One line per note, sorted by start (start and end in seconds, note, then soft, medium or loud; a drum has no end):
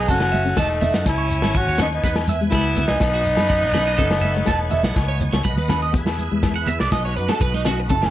0.00 1.04 F#5 medium
0.08 0.54 F#1 loud
0.08 0.29 C#4 medium
0.08 0.55 F#4 loud
0.08 0.18 A4 medium
0.08 1.06 A4 medium
0.08 kick medium
0.08 shekere medium
0.12 0.56 C#4 medium
0.20 snare medium
0.20 low agogo medium
0.32 0.42 E5 medium
0.32 high conga medium
0.32 shekere loud
0.45 0.55 C#4 medium
0.45 shekere soft
0.56 0.92 E1 medium
0.56 0.76 A3 medium
0.56 1.04 D#4 medium
0.56 0.67 A5 medium
0.56 kick medium
0.56 snare medium
0.56 low conga medium
0.56 low agogo medium
0.56 shekere medium
0.60 1.04 A3 medium
0.81 1.01 B3 medium
0.81 0.91 E5 medium
0.81 low conga medium
0.81 shekere loud
0.94 1.05 F#2 medium
0.94 1.04 F#5 medium
0.94 snare medium
0.94 high conga medium
0.94 shekere soft
1.06 1.40 C#2 loud
1.06 1.59 E4 medium
1.06 2.03 C#5 medium
1.06 3.00 G#5 medium
1.06 kick medium
1.06 snare medium
1.06 low agogo medium
1.06 shekere medium
1.10 1.58 C#4 medium
1.18 1.28 C#5 medium
1.30 shekere medium
1.42 1.68 G#1 medium
1.42 1.62 B3 medium
1.42 1.52 C#6 medium
1.42 snare medium
1.42 high conga medium
1.42 low agogo medium
1.42 shekere soft
1.53 1.81 F#4 medium
1.53 1.65 C#6 medium
1.53 kick medium
1.53 shekere medium
1.58 1.81 C#4 medium
1.67 2.01 D#2 medium
1.67 1.77 C#5 medium
1.78 1.87 B3 medium
1.78 1.99 C#4 medium
1.78 1.87 D#4 medium
1.78 1.89 C#6 medium
1.78 snare medium
1.78 low conga medium
1.78 low agogo medium
1.78 shekere loud
1.92 2.25 B3 medium
1.92 2.24 D#4 medium
1.92 shekere soft
2.03 2.49 E2 loud
2.03 2.23 B3 medium
2.03 2.14 B4 medium
2.03 3.98 B4 medium
2.03 kick medium
2.03 shekere medium
2.16 snare medium
2.16 low agogo medium
2.28 2.39 E5 medium
2.28 high conga medium
2.28 shekere medium
2.40 2.50 G#3 medium
2.40 shekere soft
2.50 2.87 C#2 medium
2.50 2.72 G#3 medium
2.50 2.86 E4 loud
2.50 kick medium
2.50 snare medium
2.50 low conga medium
2.50 low agogo medium
2.50 shekere medium
2.55 2.88 B3 medium
2.55 2.64 B5 medium
2.75 2.97 B3 medium
2.75 2.86 E5 medium
2.75 low conga medium
2.75 shekere medium
2.88 3.00 C2 medium
2.88 5.42 B3 medium
2.88 5.41 D#4 loud
2.88 2.98 G#5 medium
2.88 snare medium
2.88 high conga medium
2.88 shekere soft
3.00 3.35 B1 loud
3.00 3.97 D#5 medium
3.00 4.95 F#5 medium
3.00 kick medium
3.00 snare medium
3.00 low agogo medium
3.00 shekere medium
3.14 3.23 F#4 medium
3.25 shekere medium
3.36 3.64 F#2 medium
3.36 3.58 B3 medium
3.36 3.47 B5 medium
3.36 snare medium
3.36 high conga medium
3.36 low agogo medium
3.36 shekere soft
3.47 3.59 B5 medium
3.47 kick medium
3.47 shekere medium
3.61 3.96 B1 loud
3.61 3.71 B4 medium
3.73 3.94 C#4 medium
3.73 3.84 B5 medium
3.73 snare medium
3.73 low conga medium
3.73 low agogo medium
3.73 shekere medium
3.85 3.96 D#5 medium
3.85 shekere soft
3.96 4.45 F#1 loud
3.96 4.18 C#4 medium
3.96 4.08 A4 medium
3.96 4.94 C#5 medium
3.96 kick medium
3.96 shekere medium
4.00 4.96 A4 medium
4.11 snare medium
4.11 low agogo medium
4.21 4.32 E5 medium
4.21 high conga medium
4.21 shekere medium
4.34 4.44 A3 medium
4.34 shekere soft
4.45 4.82 E1 medium
4.45 4.66 A3 medium
4.45 4.57 A5 medium
4.45 kick medium
4.45 snare medium
4.45 low conga medium
4.45 low agogo medium
4.45 shekere medium
4.70 4.81 E5 medium
4.70 muted nylon-string guitar stroke medium
4.70 low conga medium
4.70 shekere medium
4.83 4.95 B1 medium
4.83 4.94 F#5 medium
4.83 snare medium
4.83 high conga medium
4.83 shekere soft
4.94 5.31 C#2 medium
4.94 5.44 C#5 medium
4.94 5.44 G#5 medium
4.94 kick medium
4.94 snare medium
4.94 low agogo medium
4.94 shekere medium
5.08 5.18 C#5 medium
5.20 low conga medium
5.20 shekere loud
5.33 5.44 C#2 medium
5.33 5.53 B3 medium
5.33 5.42 C#6 medium
5.33 snare medium
5.33 high conga medium
5.33 low agogo medium
5.33 shekere soft
5.44 5.57 B1 medium
5.44 5.94 B4 medium
5.44 5.94 D#5 medium
5.44 5.94 F#5 medium
5.44 5.54 B5 medium
5.44 kick medium
5.44 high conga medium
5.44 shekere medium
5.57 5.92 D#2 medium
5.57 5.68 B4 medium
5.57 high conga medium
5.68 5.88 C#4 medium
5.68 5.80 B5 medium
5.68 snare medium
5.68 low conga medium
5.68 low agogo medium
5.68 shekere loud
5.82 5.92 D#5 medium
5.82 shekere soft
5.93 6.29 E2 medium
5.93 6.13 B3 medium
5.93 6.92 G#4 medium
5.93 6.92 B4 medium
5.93 kick medium
5.93 shekere medium
5.97 6.93 E4 medium
6.06 snare medium
6.06 high conga medium
6.06 low agogo medium
6.18 high conga medium
6.18 shekere medium
6.31 6.77 E2 medium
6.31 6.41 G#3 medium
6.43 6.63 G#3 medium
6.43 kick medium
6.43 snare medium
6.43 low agogo medium
6.43 shekere medium
6.56 6.67 F#5 medium
6.67 6.87 B3 medium
6.67 6.80 E5 loud
6.67 low conga medium
6.67 shekere medium
6.80 6.92 C2 medium
6.80 6.92 D5 medium
6.80 snare medium
6.91 7.15 B1 loud
6.91 7.90 D#4 medium
6.91 8.10 F#4 medium
6.91 7.90 B4 medium
6.91 7.04 D#5 loud
6.91 kick medium
6.91 snare medium
6.91 high conga medium
6.91 low agogo medium
6.91 shekere medium
7.05 7.16 C#5 medium
7.17 7.29 F#2 medium
7.17 7.29 B4 medium
7.17 shekere medium
7.28 7.49 B3 medium
7.28 7.40 A4 medium
7.28 snare medium
7.28 high conga medium
7.28 low agogo medium
7.40 7.87 B1 medium
7.40 7.53 B4 loud
7.40 kick medium
7.40 shekere loud
7.54 7.66 D#4 medium
7.54 high conga medium
7.65 7.85 C#4 medium
7.65 7.78 F#4 medium
7.65 snare medium
7.65 low conga medium
7.65 low agogo medium
7.65 shekere medium
7.80 muted clean electric guitar stroke loud
7.89 8.10 F#1 loud
7.89 8.10 C#4 medium
7.89 8.10 E4 medium
7.89 8.02 A4 medium
7.89 8.10 A4 medium
7.89 kick medium
7.89 shekere loud
8.02 8.10 C#4 medium
8.02 snare medium
8.02 high conga medium
8.02 low agogo medium